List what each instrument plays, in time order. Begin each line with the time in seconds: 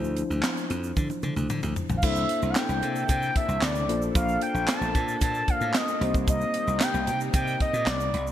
Already playing: slap bass D2, tine electric piano F3 D4 E4 C5
0.04 shaker
0.17 closed hi-hat, shaker
0.30 slap bass D2, shaker
0.43 snare, clap, closed hi-hat, shaker
0.57 shaker
0.70 slap bass F2, closed hi-hat, shaker
0.84 shaker
0.97 slap bass D3, kick, high tom, shaker
1.10 high tom, shaker
1.23 slap bass D3, mid tom, shaker
1.36 slap bass D2, mid tom, shaker
1.50 slap bass D3, mid tom, shaker
1.63 slap bass D2, mid tom, shaker
1.76 floor tom, shaker
1.89 slap bass A#1, floor tom, shaker
1.97 analog synth lead F5
2.02 slap bass C2, analog synth pad C3 A#3 D4 E4 A4, tine electric piano A#3 D4 E4 A4 C5, analog synth lead E5, kick, crash, shaker
2.15 shaker
2.29 closed hi-hat
2.42 slap bass C2, shaker
2.50 analog synth lead F#5
2.55 analog synth lead G5, snare, clap, closed hi-hat, shaker
2.69 slap bass C2, shaker
2.82 slap bass C3, closed hi-hat, shaker
2.96 shaker
3.09 slap bass C3, analog synth lead G5, kick, closed hi-hat, shaker
3.22 shaker
3.36 analog synth lead E5, kick, closed hi-hat
3.49 slap bass C2, shaker
3.61 slap bass D2, analog synth lead D5, snare, clap, closed hi-hat, shaker
3.75 shaker
3.88 slap bass A#1, tine electric piano A#3 D4 F4 A4 C5, analog synth pad A#3 A4, closed hi-hat
4.02 shaker
4.15 slap bass A#1, analog synth lead F5, kick, closed hi-hat, shaker
4.29 shaker
4.41 analog synth lead G5, closed hi-hat
4.54 slap bass A#1, shaker
4.68 analog synth lead A5, snare, clap, closed hi-hat, shaker
4.81 slap bass A#1, shaker
4.95 slap bass A#2, kick, closed hi-hat, shaker
5.08 shaker
5.21 slap bass A#2, analog synth lead A5, kick, closed hi-hat, shaker
5.34 shaker
5.48 analog synth lead F5, kick, closed hi-hat
5.61 slap bass A2, shaker
5.74 analog synth lead D#5, snare, clap, closed hi-hat, shaker
5.88 shaker
6.00 slap bass C2, analog synth pad C3 G3 D#4, tine electric piano A#3 C4 D#4 G4 C5, closed hi-hat
6.14 kick, shaker
6.28 analog synth lead D#5, kick, closed hi-hat, shaker
6.41 shaker
6.54 closed hi-hat
6.67 slap bass C2, shaker
6.80 analog synth lead G5, snare, clap, closed hi-hat, shaker
6.94 slap bass C2, shaker
7.07 slap bass C3, analog synth lead G5, closed hi-hat, shaker
7.21 shaker
7.34 slap bass C3, analog synth lead G5, kick, closed hi-hat, shaker
7.47 shaker
7.60 analog synth lead D#5, kick, closed hi-hat
7.73 slap bass A#2, shaker
7.86 slap bass C2, analog synth lead D5, snare, clap, closed hi-hat, shaker
8.00 shaker
8.14 slap bass C2, closed hi-hat
8.27 shaker